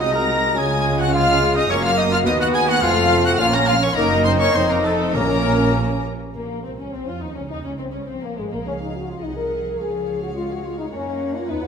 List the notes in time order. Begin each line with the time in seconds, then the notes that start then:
Already playing: G#3
0.00 C2 C3 D#4 F#4 D#5 D#6
0.12 A#4 A#5 A#6
0.55 C#2 C#3 C#4 F4 G#4 G#5 G#6
0.98 F#4 F#5 F#6
1.13 G#3 F4 F5 F6
1.55 D#4 D#5 D#6
1.68 F#1 F#2 A#3 C#4 F#4 C#5 C#6
1.83 F4 F5 F6
1.97 D#4 D#5 D#6
2.11 F4 F5 F6
2.25 D#2 B3 D#4 F#4 D#5 D#6
2.39 F#4 F#5 F#6
2.54 G#4 G#5 G#6
2.68 F#4 F#5 F#6
2.82 F1 F2 A3 C4 F4 F5 F6
3.25 F#4 F#5 F#6
3.38 A#1 A#2 A#3 C#4 F4 F5 F6
3.52 A#4 A#5 A#6
3.67 F4 F5 F6
3.81 C#4 C#5 C#6
3.95 F#1 F#2 A#3 D#4 A#4 A#5
4.24 C4 C5 C6
4.39 C#4 C#5 C#6
4.53 F1 F2 C4 D#4 C5 C6
4.69 A#3 A#4 A#5
4.83 A3 A4 A5
5.14 A#1 A#2 A#3 C#4 A#4 A#5
6.34 A#1 A#2 A#3
6.63 C2 C4
6.79 C#2 C#4
6.92 C2 F3 C4
7.07 F2 F4
7.19 D#2 D#4
7.23 D#4
7.34 C#2 C#4
7.48 D#2 C#3 D#4
7.63 C#2 C#4
7.77 C2 C4
7.91 C#2 C#4
8.06 C2 F3 C4
8.21 A#1 A#3
8.35 G#1 G#3
8.50 A#1 A#3
8.63 C#2 C#4 G#4 F5
8.81 D#4
8.95 F#4
9.09 F4
9.19 C2 D#4 D#5 F#5
9.37 A#4
9.77 C#2 F3 G#4 C#5 F5
10.23 F#4
10.35 G#3 F4
10.51 F#4
10.63 F4
10.78 D#4
10.92 F#2 A#3 C#4 A#4 F#5
11.36 F4
11.47 D#2 B3 D#4 B4
11.62 F#4